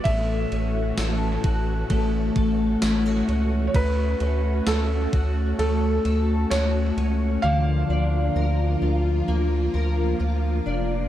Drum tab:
RD |xxxxxxxx|xxxxxxxx|--------|
TB |--x---x-|--x---x-|--------|
SD |--o---o-|--o---o-|--------|
BD |o--ooo--|o--o----|--------|